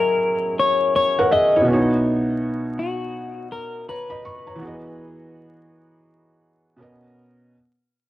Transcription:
Already playing: felt piano F#3 C#4 E4 G#4 A#4, clean electric guitar A#4
0.59 clean electric guitar C#5
0.96 clean electric guitar C#5
1.19 felt piano A#4 F#5
1.31 felt piano G#4 E5, clean electric guitar D#5
1.56 felt piano E4 C#5
1.62 felt piano B2 B3
1.67 felt piano C#4 F#4
1.73 felt piano D#4 C#5
2.79 clean electric guitar F#4
3.52 clean electric guitar A#4
3.89 clean electric guitar B4, felt piano C#5 A#5
4.10 felt piano D#5 B5
4.25 felt piano C#6
4.47 felt piano C#5 A#5
4.56 felt piano E3 B3
4.61 felt piano F#4 G#4
4.67 felt piano D#5
6.76 felt piano B2 B3 C#4
6.81 felt piano A#4 D#5

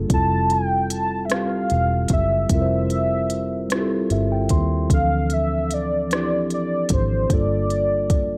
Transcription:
Already playing: tine electric piano G3 A#3 D4 F4 G#4 A4
0.08 fingered electric bass F1, tine electric piano G3 C4 E4 F4, kick, closed hi-hat
0.14 tine electric piano A4, soft synth lead A5
0.50 soft synth lead G5, closed hi-hat
0.90 soft synth lead A5, closed hi-hat
1.25 soft synth lead E5
1.29 tine electric piano G3 C4, soft synth lead F5, cross-stick, closed hi-hat
1.33 tine electric piano F4 G4
1.70 fingered electric bass E1, closed hi-hat
2.08 fingered electric bass F#1, kick, closed hi-hat
2.13 soft synth lead E5
2.49 fingered electric bass F1, tine electric piano G3 C4 E4 F4, soft synth lead E5, kick, closed hi-hat
2.55 tine electric piano A#4
2.61 tine electric piano C5
2.90 closed hi-hat
3.30 closed hi-hat
3.69 tine electric piano G3 C4 E4, cross-stick, closed hi-hat
3.74 tine electric piano F4 G4
3.81 tine electric piano A4
4.10 fingered electric bass G1, tine electric piano E5, closed hi-hat
4.32 tine electric piano G5
4.49 fingered electric bass D#2, tine electric piano C6, kick, closed hi-hat
4.88 fingered electric bass D2, tine electric piano E3 F3 C4 D4, kick, closed hi-hat
4.93 tine electric piano A4, soft synth lead F5
5.30 soft synth lead E5, closed hi-hat
5.71 soft synth lead D5, closed hi-hat
6.09 tine electric piano F3 C4 D4, cross-stick, closed hi-hat
6.14 tine electric piano E4 G4, soft synth lead D5
6.50 fingered electric bass C2, soft synth lead D5, closed hi-hat
6.89 fingered electric bass G#1, soft synth lead C5, kick, closed hi-hat
7.29 fingered electric bass G1, tine electric piano G3 A#3 D4 F4, kick, closed hi-hat
7.33 tine electric piano A4, soft synth lead D5
7.70 closed hi-hat
8.10 kick, closed hi-hat

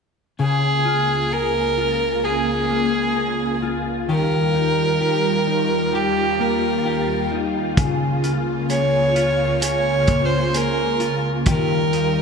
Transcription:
0.39 string machine C#2 C#3 A#3 F4, clean electric guitar C#3 G#4, fiddle G#4
0.85 clean electric guitar F4
1.31 clean electric guitar G#4, fiddle A#4
1.77 clean electric guitar F4
2.24 clean electric guitar G#4, fiddle G#4
2.70 clean electric guitar A#3
3.16 clean electric guitar G#4
3.62 clean electric guitar F4
4.07 string machine D#2 D#3 G3, clean electric guitar D#3 G4
4.11 fiddle A#4
4.55 clean electric guitar D#4
5.01 clean electric guitar G4
5.47 clean electric guitar D#4
5.93 clean electric guitar G4, fiddle G4
6.39 clean electric guitar A#3, fiddle A#4
6.85 clean electric guitar G4
7.31 clean electric guitar D#4
7.77 string machine C#2 C#3 A#3, clean electric guitar C#3 G#4, kick, closed hi-hat
8.23 clean electric guitar F4, closed hi-hat
8.70 clean electric guitar G#4, fiddle C#5, closed hi-hat
9.15 clean electric guitar F4, closed hi-hat
9.62 clean electric guitar G#4, fiddle C#5, closed hi-hat
10.07 clean electric guitar A#3, kick, closed hi-hat
10.25 fiddle C5
10.54 clean electric guitar G#4, fiddle A#4, closed hi-hat
11.00 clean electric guitar F4, closed hi-hat
11.46 string machine D#2 D#3 G3, clean electric guitar D#3 G4, fiddle A#4, kick, closed hi-hat
11.93 clean electric guitar D#4, closed hi-hat

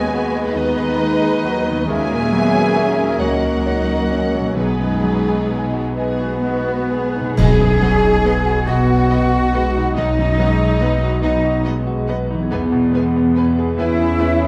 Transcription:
Already playing: double bass section D#2, grand piano D#2 D#3 G#3 B3, french horn section B2 G#3, harp D#3, cello section G#3, viola section B3, violin section C#4 B4 G#5, clarinet G#4, flute section D#5
0.14 violin section B3, grand piano F#4
0.36 grand piano G#4
0.53 cello section D#3, viola section B3, clarinet D#4, violin section D#4 D#5, flute section B4, grand piano B4
0.78 grand piano G#4
0.99 viola section G#3, grand piano B4
1.22 grand piano G#4
1.44 viola section F#3, grand piano F#4
1.67 harp D#3, grand piano B3
1.75 harp C#4
1.79 harp F#4
1.84 harp A#4
1.88 grand piano D#2, double bass section D#2, viola section F#3 A#3, cello section G#3, french horn section C#4 A#4, violin section C#4 A#4 G#5, clarinet G#4, flute section E5
2.11 grand piano A#2
2.32 grand piano F#3, viola section B3
2.54 grand piano C#4
2.76 viola section C#4, grand piano F#4
2.97 grand piano C#4
3.20 double bass section C#2, cello section F#3, viola section A#3, violin section C#4 F#5, clarinet F#4, grand piano C#5, flute section D#5
3.42 grand piano F#4
3.66 violin section D#4, grand piano C#5
3.87 grand piano F#4
4.11 grand piano C#4, violin section C#4
4.34 grand piano F#3
4.39 harp B2
4.44 harp D#4
4.49 harp F#4
4.53 grand piano B1, french horn section G#3, harp G#4
4.57 double bass section B1, cello section B2, viola section G#3 B3, clarinet B3, french horn section D#4, violin section D#4 G#4 B4, flute section G#4
4.80 grand piano F#2
5.04 grand piano F#3
5.28 grand piano D#4
5.49 grand piano G#4
5.74 grand piano F#4
5.96 cello section B3, cor anglais B3, violin section G#4, flute section B4, grand piano D#5
6.20 grand piano F#4
6.44 violin section F#4, grand piano D#5
6.68 grand piano F#4
6.91 violin section G#4, grand piano G#4
7.15 grand piano D#4
7.20 harp B2
7.24 harp D#4
7.29 harp F#4
7.34 double bass section B1, viola section B3, harp B4
7.38 grand piano B1, timpani B2, cor anglais G#4, cello section G#4, violin section D#5 F#5, flute section G#5, concert bass drum, crash
7.60 grand piano F#2
7.81 grand piano F#3, viola section B3, violin section D#5 F#5
8.03 grand piano D#4
8.24 viola section B3, grand piano B4, violin section D#5 F#5
8.46 grand piano F#4
8.67 double bass section B1, viola section B3, french horn section B3, cello section F#4, cor anglais F#4, violin section D#5 F#5, grand piano D#5, flute section F#5
8.89 grand piano F#4
9.09 viola section B3, french horn section B3, violin section D#5 F#5, grand piano D#5
9.34 grand piano F#4
9.52 french horn section G#3, viola section B3, grand piano B4, violin section D#5 F#5
9.77 grand piano D#4
9.94 double bass section B1, grand piano B1, french horn section F#3, viola section B3, cor anglais D#4, cello section D#4, flute section D#5, violin section D#5 F#5
10.19 grand piano F#2
10.38 grand piano F#3, french horn section G#3, viola section B3, violin section D#5 F#5
10.62 grand piano D#4
10.80 french horn section F#3, viola section B3, grand piano B4, violin section D#5 F#5
11.04 grand piano F#4
11.21 double bass section B1, french horn section F#3, viola section B3, cor anglais D#4, cello section D#4, violin section D#5 F#5, flute section D#5, grand piano D#5
11.45 grand piano F#4
11.64 french horn section G#3, viola section B3, violin section D#5 F#5, grand piano D#5
11.87 grand piano F#4
12.08 viola section B3, french horn section B3, grand piano B4, violin section D#5 F#5
12.31 harp E3, grand piano D#4
12.38 harp B3
12.42 harp G#4
12.50 grand piano E2, double bass section E2, viola section B3, french horn section B3, violin section B4 G#5
12.72 grand piano B2
12.92 grand piano G#3, viola section B3, violin section B4 G#5
13.17 grand piano B3
13.35 viola section B3, violin section B4 G#5, grand piano B4
13.59 grand piano G#4
13.77 double bass section E2, viola section B3, french horn section C#4, cor anglais E4, cello section E4, grand piano B4, violin section B4 G#5, flute section E5
13.99 grand piano G#4
14.19 viola section B3, violin section B4 G#5, grand piano B4
14.41 grand piano G#4

